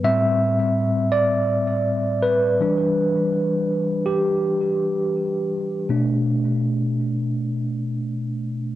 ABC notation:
X:1
M:4/4
L:1/8
Q:"Swing 16ths" 1/4=82
K:Ador
V:1 name="Tine electric piano"
e3 d3 B2- | B3 G4 z | z8 |]
V:2 name="Tine electric piano" clef=bass
[A,,G,C]3 z4 [E,G,D]- | [E,G,D]6- [E,G,D] z | [B,,A,D]3 z4 z |]